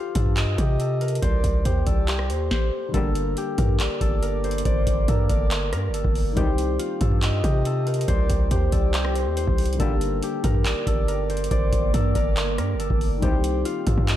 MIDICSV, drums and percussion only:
0, 0, Header, 1, 2, 480
1, 0, Start_track
1, 0, Key_signature, -2, "minor"
1, 0, Tempo, 428571
1, 1372, Time_signature, 4, 2, 24, 8
1, 15865, End_track
2, 0, Start_track
2, 0, Title_t, "Drums"
2, 169, Note_on_c, 9, 42, 85
2, 171, Note_on_c, 9, 36, 103
2, 281, Note_off_c, 9, 42, 0
2, 283, Note_off_c, 9, 36, 0
2, 292, Note_on_c, 9, 36, 89
2, 404, Note_off_c, 9, 36, 0
2, 411, Note_on_c, 9, 39, 110
2, 412, Note_on_c, 9, 42, 75
2, 523, Note_off_c, 9, 39, 0
2, 524, Note_off_c, 9, 42, 0
2, 651, Note_on_c, 9, 36, 96
2, 653, Note_on_c, 9, 42, 77
2, 763, Note_off_c, 9, 36, 0
2, 765, Note_off_c, 9, 42, 0
2, 892, Note_on_c, 9, 42, 69
2, 1004, Note_off_c, 9, 42, 0
2, 1132, Note_on_c, 9, 42, 43
2, 1212, Note_off_c, 9, 42, 0
2, 1212, Note_on_c, 9, 42, 57
2, 1292, Note_off_c, 9, 42, 0
2, 1292, Note_on_c, 9, 42, 68
2, 1372, Note_off_c, 9, 42, 0
2, 1372, Note_on_c, 9, 36, 111
2, 1372, Note_on_c, 9, 42, 73
2, 1484, Note_off_c, 9, 36, 0
2, 1484, Note_off_c, 9, 42, 0
2, 1611, Note_on_c, 9, 36, 91
2, 1612, Note_on_c, 9, 42, 90
2, 1723, Note_off_c, 9, 36, 0
2, 1724, Note_off_c, 9, 42, 0
2, 1852, Note_on_c, 9, 36, 87
2, 1852, Note_on_c, 9, 42, 84
2, 1964, Note_off_c, 9, 36, 0
2, 1964, Note_off_c, 9, 42, 0
2, 2090, Note_on_c, 9, 42, 82
2, 2092, Note_on_c, 9, 36, 107
2, 2202, Note_off_c, 9, 42, 0
2, 2204, Note_off_c, 9, 36, 0
2, 2333, Note_on_c, 9, 39, 111
2, 2333, Note_on_c, 9, 42, 78
2, 2445, Note_off_c, 9, 39, 0
2, 2445, Note_off_c, 9, 42, 0
2, 2452, Note_on_c, 9, 37, 90
2, 2564, Note_off_c, 9, 37, 0
2, 2574, Note_on_c, 9, 42, 75
2, 2686, Note_off_c, 9, 42, 0
2, 2812, Note_on_c, 9, 36, 113
2, 2812, Note_on_c, 9, 38, 93
2, 2924, Note_off_c, 9, 36, 0
2, 2924, Note_off_c, 9, 38, 0
2, 3293, Note_on_c, 9, 36, 112
2, 3293, Note_on_c, 9, 42, 74
2, 3405, Note_off_c, 9, 36, 0
2, 3405, Note_off_c, 9, 42, 0
2, 3533, Note_on_c, 9, 42, 90
2, 3645, Note_off_c, 9, 42, 0
2, 3772, Note_on_c, 9, 42, 83
2, 3884, Note_off_c, 9, 42, 0
2, 4011, Note_on_c, 9, 42, 82
2, 4012, Note_on_c, 9, 36, 107
2, 4123, Note_off_c, 9, 42, 0
2, 4124, Note_off_c, 9, 36, 0
2, 4133, Note_on_c, 9, 36, 93
2, 4245, Note_off_c, 9, 36, 0
2, 4252, Note_on_c, 9, 39, 113
2, 4253, Note_on_c, 9, 42, 79
2, 4364, Note_off_c, 9, 39, 0
2, 4365, Note_off_c, 9, 42, 0
2, 4492, Note_on_c, 9, 36, 95
2, 4493, Note_on_c, 9, 42, 77
2, 4604, Note_off_c, 9, 36, 0
2, 4605, Note_off_c, 9, 42, 0
2, 4733, Note_on_c, 9, 42, 70
2, 4845, Note_off_c, 9, 42, 0
2, 4973, Note_on_c, 9, 42, 42
2, 5053, Note_off_c, 9, 42, 0
2, 5053, Note_on_c, 9, 42, 56
2, 5132, Note_off_c, 9, 42, 0
2, 5132, Note_on_c, 9, 42, 69
2, 5212, Note_off_c, 9, 42, 0
2, 5212, Note_on_c, 9, 42, 74
2, 5213, Note_on_c, 9, 36, 112
2, 5324, Note_off_c, 9, 42, 0
2, 5325, Note_off_c, 9, 36, 0
2, 5452, Note_on_c, 9, 36, 93
2, 5452, Note_on_c, 9, 42, 94
2, 5564, Note_off_c, 9, 36, 0
2, 5564, Note_off_c, 9, 42, 0
2, 5692, Note_on_c, 9, 42, 85
2, 5693, Note_on_c, 9, 36, 92
2, 5804, Note_off_c, 9, 42, 0
2, 5805, Note_off_c, 9, 36, 0
2, 5930, Note_on_c, 9, 42, 84
2, 5932, Note_on_c, 9, 36, 109
2, 6042, Note_off_c, 9, 42, 0
2, 6044, Note_off_c, 9, 36, 0
2, 6172, Note_on_c, 9, 39, 115
2, 6173, Note_on_c, 9, 42, 81
2, 6284, Note_off_c, 9, 39, 0
2, 6285, Note_off_c, 9, 42, 0
2, 6413, Note_on_c, 9, 37, 73
2, 6414, Note_on_c, 9, 42, 81
2, 6525, Note_off_c, 9, 37, 0
2, 6526, Note_off_c, 9, 42, 0
2, 6653, Note_on_c, 9, 42, 72
2, 6765, Note_off_c, 9, 42, 0
2, 6771, Note_on_c, 9, 36, 101
2, 6883, Note_off_c, 9, 36, 0
2, 6893, Note_on_c, 9, 46, 75
2, 7005, Note_off_c, 9, 46, 0
2, 7131, Note_on_c, 9, 42, 73
2, 7132, Note_on_c, 9, 36, 113
2, 7243, Note_off_c, 9, 42, 0
2, 7244, Note_off_c, 9, 36, 0
2, 7371, Note_on_c, 9, 42, 88
2, 7483, Note_off_c, 9, 42, 0
2, 7610, Note_on_c, 9, 42, 86
2, 7722, Note_off_c, 9, 42, 0
2, 7849, Note_on_c, 9, 42, 84
2, 7851, Note_on_c, 9, 36, 104
2, 7961, Note_off_c, 9, 42, 0
2, 7963, Note_off_c, 9, 36, 0
2, 7971, Note_on_c, 9, 36, 93
2, 8083, Note_off_c, 9, 36, 0
2, 8091, Note_on_c, 9, 39, 115
2, 8092, Note_on_c, 9, 42, 81
2, 8203, Note_off_c, 9, 39, 0
2, 8204, Note_off_c, 9, 42, 0
2, 8331, Note_on_c, 9, 36, 96
2, 8333, Note_on_c, 9, 42, 78
2, 8443, Note_off_c, 9, 36, 0
2, 8445, Note_off_c, 9, 42, 0
2, 8572, Note_on_c, 9, 42, 70
2, 8684, Note_off_c, 9, 42, 0
2, 8812, Note_on_c, 9, 42, 42
2, 8892, Note_off_c, 9, 42, 0
2, 8892, Note_on_c, 9, 42, 58
2, 8972, Note_off_c, 9, 42, 0
2, 8972, Note_on_c, 9, 42, 70
2, 9052, Note_off_c, 9, 42, 0
2, 9052, Note_on_c, 9, 36, 110
2, 9052, Note_on_c, 9, 42, 76
2, 9164, Note_off_c, 9, 36, 0
2, 9164, Note_off_c, 9, 42, 0
2, 9291, Note_on_c, 9, 36, 98
2, 9292, Note_on_c, 9, 42, 92
2, 9403, Note_off_c, 9, 36, 0
2, 9404, Note_off_c, 9, 42, 0
2, 9532, Note_on_c, 9, 42, 85
2, 9533, Note_on_c, 9, 36, 89
2, 9644, Note_off_c, 9, 42, 0
2, 9645, Note_off_c, 9, 36, 0
2, 9771, Note_on_c, 9, 42, 85
2, 9772, Note_on_c, 9, 36, 102
2, 9883, Note_off_c, 9, 42, 0
2, 9884, Note_off_c, 9, 36, 0
2, 10012, Note_on_c, 9, 39, 113
2, 10013, Note_on_c, 9, 42, 79
2, 10124, Note_off_c, 9, 39, 0
2, 10125, Note_off_c, 9, 42, 0
2, 10133, Note_on_c, 9, 37, 96
2, 10245, Note_off_c, 9, 37, 0
2, 10254, Note_on_c, 9, 42, 74
2, 10366, Note_off_c, 9, 42, 0
2, 10494, Note_on_c, 9, 42, 69
2, 10606, Note_off_c, 9, 42, 0
2, 10612, Note_on_c, 9, 36, 100
2, 10724, Note_off_c, 9, 36, 0
2, 10734, Note_on_c, 9, 42, 57
2, 10734, Note_on_c, 9, 46, 73
2, 10813, Note_off_c, 9, 42, 0
2, 10813, Note_on_c, 9, 42, 58
2, 10846, Note_off_c, 9, 46, 0
2, 10894, Note_off_c, 9, 42, 0
2, 10894, Note_on_c, 9, 42, 57
2, 10973, Note_off_c, 9, 42, 0
2, 10973, Note_on_c, 9, 36, 113
2, 10973, Note_on_c, 9, 42, 76
2, 11085, Note_off_c, 9, 36, 0
2, 11085, Note_off_c, 9, 42, 0
2, 11213, Note_on_c, 9, 42, 87
2, 11325, Note_off_c, 9, 42, 0
2, 11453, Note_on_c, 9, 42, 86
2, 11565, Note_off_c, 9, 42, 0
2, 11691, Note_on_c, 9, 42, 83
2, 11693, Note_on_c, 9, 36, 105
2, 11803, Note_off_c, 9, 42, 0
2, 11805, Note_off_c, 9, 36, 0
2, 11813, Note_on_c, 9, 36, 93
2, 11925, Note_off_c, 9, 36, 0
2, 11933, Note_on_c, 9, 39, 114
2, 11934, Note_on_c, 9, 42, 79
2, 12045, Note_off_c, 9, 39, 0
2, 12046, Note_off_c, 9, 42, 0
2, 12172, Note_on_c, 9, 36, 97
2, 12174, Note_on_c, 9, 42, 79
2, 12284, Note_off_c, 9, 36, 0
2, 12286, Note_off_c, 9, 42, 0
2, 12414, Note_on_c, 9, 42, 68
2, 12526, Note_off_c, 9, 42, 0
2, 12653, Note_on_c, 9, 42, 42
2, 12733, Note_off_c, 9, 42, 0
2, 12733, Note_on_c, 9, 42, 57
2, 12813, Note_off_c, 9, 42, 0
2, 12813, Note_on_c, 9, 42, 69
2, 12893, Note_off_c, 9, 42, 0
2, 12893, Note_on_c, 9, 36, 113
2, 12893, Note_on_c, 9, 42, 76
2, 13005, Note_off_c, 9, 36, 0
2, 13005, Note_off_c, 9, 42, 0
2, 13132, Note_on_c, 9, 36, 94
2, 13133, Note_on_c, 9, 42, 90
2, 13244, Note_off_c, 9, 36, 0
2, 13245, Note_off_c, 9, 42, 0
2, 13373, Note_on_c, 9, 36, 88
2, 13373, Note_on_c, 9, 42, 86
2, 13485, Note_off_c, 9, 36, 0
2, 13485, Note_off_c, 9, 42, 0
2, 13611, Note_on_c, 9, 42, 85
2, 13612, Note_on_c, 9, 36, 103
2, 13723, Note_off_c, 9, 42, 0
2, 13724, Note_off_c, 9, 36, 0
2, 13853, Note_on_c, 9, 39, 115
2, 13854, Note_on_c, 9, 42, 80
2, 13965, Note_off_c, 9, 39, 0
2, 13966, Note_off_c, 9, 42, 0
2, 14094, Note_on_c, 9, 37, 71
2, 14094, Note_on_c, 9, 42, 81
2, 14206, Note_off_c, 9, 37, 0
2, 14206, Note_off_c, 9, 42, 0
2, 14333, Note_on_c, 9, 42, 69
2, 14445, Note_off_c, 9, 42, 0
2, 14452, Note_on_c, 9, 36, 99
2, 14564, Note_off_c, 9, 36, 0
2, 14573, Note_on_c, 9, 46, 74
2, 14685, Note_off_c, 9, 46, 0
2, 14812, Note_on_c, 9, 36, 113
2, 14812, Note_on_c, 9, 42, 77
2, 14924, Note_off_c, 9, 36, 0
2, 14924, Note_off_c, 9, 42, 0
2, 15052, Note_on_c, 9, 42, 90
2, 15164, Note_off_c, 9, 42, 0
2, 15292, Note_on_c, 9, 42, 83
2, 15404, Note_off_c, 9, 42, 0
2, 15530, Note_on_c, 9, 42, 84
2, 15532, Note_on_c, 9, 36, 107
2, 15642, Note_off_c, 9, 42, 0
2, 15644, Note_off_c, 9, 36, 0
2, 15652, Note_on_c, 9, 36, 91
2, 15764, Note_off_c, 9, 36, 0
2, 15773, Note_on_c, 9, 39, 110
2, 15774, Note_on_c, 9, 42, 80
2, 15865, Note_off_c, 9, 39, 0
2, 15865, Note_off_c, 9, 42, 0
2, 15865, End_track
0, 0, End_of_file